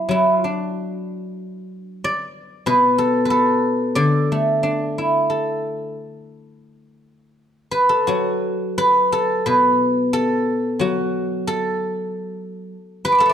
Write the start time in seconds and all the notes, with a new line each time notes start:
Already playing: E4 F#4 A4
0.09 F#3 E4
0.34 F4
0.44 D4
0.49 F#4
2.04 D5
2.66 B2 B4
2.98 A4
3.25 B4
3.30 A4
3.95 D3 D5
4.32 A3
4.63 D4
4.98 E4
5.30 A4
7.71 B4
7.89 A4
8.07 F#3 F#4
8.78 B4
9.12 A4
9.46 B2 B4
10.13 A4
10.79 F#3 F#4
11.47 A4
13.05 B4
13.12 B5 D6
13.18 A4 F#5 A5
13.26 D5 E5